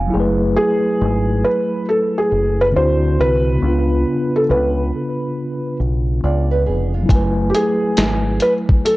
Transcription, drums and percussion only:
7.09 kick medium
7.09 closed hi-hat medium
7.54 closed hi-hat medium
7.97 finger snap medium
7.97 snare loud
7.97 closed hi-hat medium
8.40 closed hi-hat medium
8.69 kick medium
8.86 closed hi-hat medium

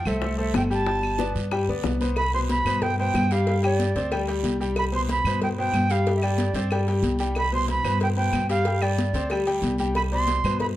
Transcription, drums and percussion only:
0.05 high conga soft
0.05 low conga medium
0.05 short guiro medium
0.05 claves medium
0.22 high bongo medium
0.22 high conga soft
0.22 low conga medium
0.22 long guiro medium
0.39 high conga soft
0.54 high bongo medium
0.54 low bongo medium
0.54 high conga medium
0.54 short guiro medium
0.54 claves medium
0.70 high conga soft
0.70 short guiro medium
0.86 high bongo medium
0.86 high conga soft
0.86 long guiro medium
1.02 high bongo soft
1.02 high conga soft
1.02 claves medium
1.18 high bongo medium
1.18 high conga medium
1.18 short guiro medium
1.35 high bongo soft
1.35 high conga soft
1.35 short guiro medium
1.51 high bongo medium
1.51 high conga soft
1.51 long guiro medium
1.51 claves medium
1.68 high conga soft
1.84 high bongo medium
1.84 low bongo medium
1.84 high conga medium
1.84 short guiro medium
2.01 high bongo soft
2.01 high conga medium
2.01 short guiro medium
2.16 cowbell loud
2.16 high conga soft
2.16 long guiro medium
2.16 claves medium
2.34 high conga soft
2.49 cowbell medium
2.49 high conga loud
2.49 short guiro medium
2.66 high conga soft
2.66 low conga medium
2.66 short guiro medium
2.66 claves medium
2.82 cowbell loud
2.82 high conga soft
2.82 low conga medium
2.82 long guiro medium
2.98 high conga soft
3.14 cowbell medium
3.14 high conga medium
3.14 short guiro medium
3.14 claves medium
3.31 cowbell medium
3.31 high conga soft
3.31 short guiro medium
3.47 cowbell loud
3.47 high conga soft
3.47 long guiro medium
3.63 cowbell medium
3.63 high conga soft
3.63 claves medium
3.80 cowbell medium
3.80 high conga loud
3.80 short guiro medium
3.95 cowbell medium
3.95 high conga soft
3.95 short guiro medium
4.12 cowbell loud
4.12 high conga soft
4.12 long guiro medium
4.12 claves medium
4.28 cowbell medium
4.28 high conga soft
4.44 cowbell medium
4.44 high conga medium
4.44 short guiro medium
4.61 short guiro medium
4.76 cowbell loud
4.76 high conga soft
4.76 long guiro medium
4.76 claves medium
4.93 high conga soft
5.09 cowbell medium
5.09 high conga loud
5.09 short guiro medium
5.25 high conga soft
5.25 low conga medium
5.25 short guiro medium
5.25 claves medium
5.42 cowbell loud
5.42 high conga soft
5.42 low conga medium
5.42 long guiro medium
5.58 high conga soft
5.74 cowbell medium
5.74 high conga medium
5.74 short guiro medium
5.74 claves medium
5.90 cowbell medium
5.90 short guiro medium
6.06 cowbell loud
6.06 high conga soft
6.06 long guiro medium
6.22 cowbell medium
6.22 high conga soft
6.22 claves medium
6.38 cowbell medium
6.38 high conga loud
6.38 short guiro medium
6.55 cowbell medium
6.55 short guiro medium
6.71 cowbell loud
6.71 high conga soft
6.71 long guiro medium
6.71 claves medium
6.88 cowbell medium
6.88 high conga soft
7.03 cowbell medium
7.03 high conga medium
7.03 short guiro medium
7.19 short guiro medium
7.35 cowbell loud
7.35 high conga soft
7.35 long guiro medium
7.35 claves medium
7.52 high conga soft
7.68 cowbell medium
7.68 high conga medium
7.68 short guiro medium
7.85 high conga soft
7.85 low conga medium
7.85 short guiro medium
7.85 claves medium
8.00 cowbell loud
8.00 high conga soft
8.00 long guiro medium
8.17 high conga soft
8.33 cowbell medium
8.33 high conga medium
8.33 short guiro medium
8.33 claves medium
8.49 cowbell medium
8.49 high conga soft
8.49 short guiro medium
8.65 cowbell loud
8.65 high conga soft
8.65 long guiro medium
8.82 cowbell medium
8.82 high conga soft
8.82 claves medium
8.98 cowbell medium
8.98 high conga loud
8.98 short guiro medium
9.14 cowbell medium
9.14 high conga soft
9.14 short guiro medium
9.30 cowbell loud
9.30 high conga soft
9.30 long guiro medium
9.30 claves medium
9.47 cowbell medium
9.47 high conga soft
9.62 cowbell medium
9.62 high conga medium
9.62 short guiro medium
9.78 high conga medium
9.78 short guiro medium
9.95 cowbell loud
9.95 high conga soft
9.95 long guiro medium
9.95 claves medium
10.12 high conga soft
10.27 cowbell medium
10.27 high conga loud
10.27 short guiro medium
10.44 high conga soft
10.44 low conga medium
10.44 short guiro medium
10.44 claves medium
10.60 cowbell loud
10.60 high conga soft
10.60 low conga medium
10.60 long guiro medium

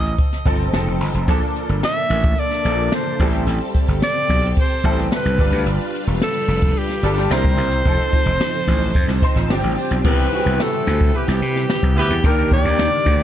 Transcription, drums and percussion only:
0.05 closed hi-hat medium
0.18 kick medium
0.18 closed hi-hat medium
0.32 snare soft
0.32 closed hi-hat medium
0.46 kick medium
0.46 closed hi-hat medium
0.60 closed hi-hat soft
0.73 snare loud
0.87 closed hi-hat soft
1.01 open hi-hat medium
1.14 closed hi-hat soft
1.28 kick loud
1.28 closed hi-hat loud
1.41 closed hi-hat soft
1.56 closed hi-hat medium
1.69 closed hi-hat medium
1.83 snare loud
1.96 closed hi-hat soft
2.09 closed hi-hat medium
2.24 kick loud
2.24 closed hi-hat soft
2.37 closed hi-hat medium
2.51 snare soft
2.51 closed hi-hat medium
2.65 closed hi-hat medium
2.79 closed hi-hat soft
2.92 snare loud
3.06 closed hi-hat soft
3.20 kick loud
3.20 open hi-hat medium
3.33 closed hi-hat medium
3.47 closed hi-hat loud
3.60 closed hi-hat soft
3.75 kick medium
3.75 closed hi-hat medium
3.88 closed hi-hat medium
4.02 snare loud
4.15 closed hi-hat soft
4.29 kick medium
4.29 snare soft
4.29 closed hi-hat medium
4.43 closed hi-hat medium
4.57 kick medium
4.57 closed hi-hat medium
4.71 closed hi-hat medium
4.84 kick medium
4.84 closed hi-hat medium
4.98 snare soft
4.98 closed hi-hat medium
5.12 snare loud
5.26 closed hi-hat soft
5.39 kick loud
5.39 open hi-hat medium
5.52 closed hi-hat medium
5.66 closed hi-hat loud
5.80 closed hi-hat soft
5.94 closed hi-hat medium
6.08 closed hi-hat medium
6.22 snare loud
6.34 closed hi-hat soft
6.48 closed hi-hat medium
6.62 kick loud
6.62 closed hi-hat medium
6.76 closed hi-hat medium
6.89 snare soft
6.89 closed hi-hat medium
7.03 closed hi-hat medium
7.18 snare soft
7.18 closed hi-hat medium
7.31 snare loud
7.45 kick medium
7.45 closed hi-hat medium
7.58 open hi-hat medium
7.71 closed hi-hat soft
7.86 kick loud
7.86 closed hi-hat loud
7.99 closed hi-hat medium
8.13 kick medium
8.13 closed hi-hat medium
8.27 closed hi-hat medium
8.41 snare loud
8.54 closed hi-hat soft
8.67 kick medium
8.67 snare soft
8.67 closed hi-hat medium
8.81 closed hi-hat medium
8.95 kick medium
8.95 closed hi-hat medium
9.09 snare soft
9.09 closed hi-hat medium
9.22 kick loud
9.22 closed hi-hat medium
9.37 snare soft
9.37 closed hi-hat medium
9.50 snare loud
9.64 closed hi-hat soft
9.78 open hi-hat medium
9.91 closed hi-hat soft
10.05 kick loud
10.05 crash loud
10.18 closed hi-hat medium
10.33 closed hi-hat medium
10.46 closed hi-hat medium
10.60 snare loud
10.73 closed hi-hat soft
10.87 snare soft
10.87 closed hi-hat medium
11.01 kick loud
11.01 closed hi-hat medium
11.15 closed hi-hat medium
11.28 snare soft
11.28 closed hi-hat medium
11.42 closed hi-hat medium
11.56 snare soft
11.56 closed hi-hat medium
11.70 snare loud
11.83 kick medium
11.83 closed hi-hat soft
11.97 open hi-hat medium
12.10 closed hi-hat soft
12.24 kick loud
12.24 closed hi-hat loud
12.38 closed hi-hat medium
12.52 kick medium
12.52 closed hi-hat medium
12.65 closed hi-hat medium
12.79 snare loud
12.92 closed hi-hat soft
13.06 kick medium
13.06 closed hi-hat medium
13.20 closed hi-hat medium

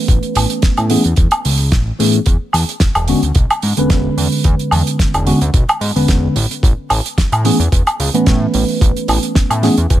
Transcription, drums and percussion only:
0.08 kick loud
0.08 closed hi-hat medium
0.23 closed hi-hat soft
0.35 open hi-hat loud
0.35 high woodblock medium
0.50 closed hi-hat medium
0.62 kick loud
0.62 snare loud
0.62 closed hi-hat medium
0.77 closed hi-hat soft
0.77 high woodblock medium
0.90 open hi-hat loud
1.04 closed hi-hat medium
1.16 kick loud
1.16 closed hi-hat medium
1.31 closed hi-hat medium
1.31 high woodblock medium
1.45 open hi-hat loud
1.57 open hi-hat medium
1.72 kick loud
1.72 snare loud
1.72 closed hi-hat medium
2.00 open hi-hat loud
2.13 closed hi-hat medium
2.26 kick loud
2.26 closed hi-hat medium
2.53 open hi-hat loud
2.53 high woodblock medium
2.69 closed hi-hat medium
2.80 kick loud
2.80 snare loud
2.80 closed hi-hat medium
2.95 closed hi-hat medium
2.95 high woodblock medium
3.08 open hi-hat loud
3.23 closed hi-hat medium
3.35 kick loud
3.35 closed hi-hat medium
3.50 closed hi-hat soft
3.50 high woodblock medium
3.62 open hi-hat loud
3.77 closed hi-hat medium
3.90 kick loud
3.90 snare loud
3.90 closed hi-hat medium
4.18 open hi-hat loud
4.32 open hi-hat medium
4.44 kick loud
4.44 closed hi-hat medium
4.59 closed hi-hat soft
4.71 open hi-hat medium
4.71 high woodblock medium
4.87 closed hi-hat medium
4.99 kick loud
4.99 snare loud
4.99 closed hi-hat medium
5.14 closed hi-hat soft
5.14 high woodblock medium
5.27 open hi-hat loud
5.41 closed hi-hat medium
5.54 kick loud
5.54 closed hi-hat medium
5.69 closed hi-hat soft
5.69 high woodblock medium
5.81 open hi-hat medium
5.96 open hi-hat medium
6.08 kick loud
6.08 snare loud
6.08 closed hi-hat medium
6.36 open hi-hat loud
6.51 closed hi-hat medium
6.63 kick loud
6.63 closed hi-hat medium
6.90 open hi-hat medium
6.90 high woodblock medium
7.06 closed hi-hat medium
7.18 kick loud
7.18 snare loud
7.18 closed hi-hat medium
7.32 closed hi-hat soft
7.32 high woodblock medium
7.45 open hi-hat loud
7.60 closed hi-hat medium
7.72 kick loud
7.72 closed hi-hat medium
7.87 closed hi-hat soft
7.87 high woodblock medium
8.00 open hi-hat loud
8.14 closed hi-hat medium
8.26 kick loud
8.26 snare loud
8.26 closed hi-hat medium
8.54 open hi-hat loud
8.68 open hi-hat medium
8.81 kick loud
8.81 closed hi-hat medium
8.97 closed hi-hat medium
9.08 open hi-hat loud
9.08 high woodblock soft
9.23 closed hi-hat medium
9.35 kick loud
9.35 snare loud
9.35 closed hi-hat medium
9.50 closed hi-hat medium
9.50 high woodblock medium
9.63 snare soft
9.63 open hi-hat medium
9.77 closed hi-hat medium
9.90 kick loud
9.90 closed hi-hat medium

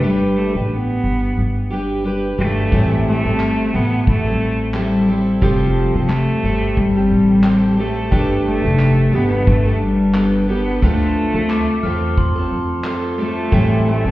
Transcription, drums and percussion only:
2.72 kick loud
3.40 clap medium
3.40 tambourine medium
4.07 kick medium
4.74 clap medium
4.74 tambourine medium
5.42 kick medium
6.10 clap medium
6.10 tambourine medium
6.77 kick medium
7.44 clap loud
7.44 tambourine medium
8.12 kick loud
8.79 clap medium
8.79 tambourine medium
9.47 kick medium
10.14 clap loud
10.14 tambourine medium
10.82 kick medium
11.50 clap medium
11.50 tambourine medium
12.18 kick medium
12.84 clap loud
12.84 tambourine medium
13.52 kick loud

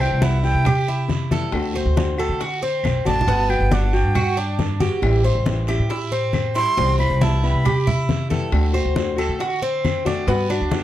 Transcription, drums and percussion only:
0.00 high bongo soft
0.00 high conga soft
0.00 claves medium
0.22 high bongo medium
0.22 high conga medium
0.22 short guiro medium
0.43 high bongo soft
0.43 high conga soft
0.43 short guiro medium
0.65 high bongo medium
0.65 high conga soft
0.65 low conga medium
0.65 long guiro medium
0.65 claves medium
0.88 high conga soft
1.08 high bongo soft
1.08 low bongo medium
1.08 high conga medium
1.08 short guiro medium
1.31 high bongo soft
1.31 high conga medium
1.31 short guiro medium
1.52 high bongo medium
1.52 high conga soft
1.52 long guiro medium
1.52 claves medium
1.74 high bongo soft
1.74 high conga soft
1.97 high bongo medium
1.97 high conga loud
1.97 short guiro medium
2.18 high bongo soft
2.18 high conga soft
2.18 short guiro medium
2.18 claves medium
2.40 high bongo medium
2.40 high conga soft
2.40 long guiro medium
2.63 high conga soft
2.84 high bongo soft
2.84 low bongo medium
2.84 high conga medium
2.84 short guiro medium
2.84 claves medium
3.06 high bongo soft
3.06 high conga medium
3.06 short guiro medium
3.21 low conga medium
3.28 high bongo medium
3.28 high conga soft
3.28 long guiro medium
3.50 high bongo soft
3.50 high conga soft
3.50 claves medium
3.71 high bongo medium
3.71 high conga loud
3.71 short guiro medium
3.93 high bongo soft
3.93 high conga soft
3.93 short guiro medium
4.15 high bongo medium
4.15 high conga soft
4.15 low conga medium
4.15 long guiro medium
4.15 claves medium
4.37 high conga soft
4.59 high bongo soft
4.59 low bongo medium
4.59 high conga medium
4.59 short guiro medium
4.80 high bongo soft
4.80 high conga medium
4.80 short guiro medium
5.02 high bongo medium
5.02 high conga soft
5.02 long guiro medium
5.02 claves medium
5.24 high bongo soft
5.24 high conga soft
5.46 high bongo medium
5.46 high conga loud
5.46 short guiro medium
5.67 high bongo soft
5.67 high conga soft
5.67 short guiro medium
5.67 claves medium
5.89 high bongo medium
5.89 high conga soft
5.89 long guiro medium
6.11 high conga soft
6.33 high bongo soft
6.33 low bongo medium
6.33 high conga medium
6.33 short guiro medium
6.33 claves medium
6.55 high bongo soft
6.55 short guiro medium
6.77 high bongo medium
6.77 high conga soft
6.77 long guiro medium
6.99 high bongo soft
6.99 high conga soft
6.99 claves medium
7.22 high bongo medium
7.22 high conga medium
7.22 short guiro medium
7.44 high bongo soft
7.44 high conga soft
7.44 short guiro medium
7.65 high bongo medium
7.65 high conga soft
7.65 low conga medium
7.65 long guiro medium
7.65 claves medium
7.88 high conga soft
7.88 low conga medium
8.09 high bongo soft
8.09 low bongo medium
8.09 high conga medium
8.09 short guiro medium
8.31 high bongo soft
8.31 high conga medium
8.31 short guiro medium
8.52 high bongo medium
8.52 high conga soft
8.52 long guiro medium
8.52 claves medium
8.74 high bongo soft
8.74 high conga soft
8.96 high bongo medium
8.96 high conga medium
8.96 short guiro medium
9.18 high bongo soft
9.18 high conga soft
9.18 short guiro medium
9.18 claves medium
9.40 high bongo medium
9.40 high conga soft
9.40 long guiro medium
9.62 high conga soft
9.84 high bongo soft
9.84 low bongo medium
9.84 high conga medium
9.84 short guiro medium
9.84 claves medium
10.06 high bongo soft
10.06 high conga medium
10.06 short guiro medium
10.28 high bongo medium
10.28 high conga soft
10.28 long guiro medium
10.50 high bongo soft
10.50 high conga soft
10.50 claves medium
10.71 high bongo medium
10.71 high conga loud
10.71 short guiro medium

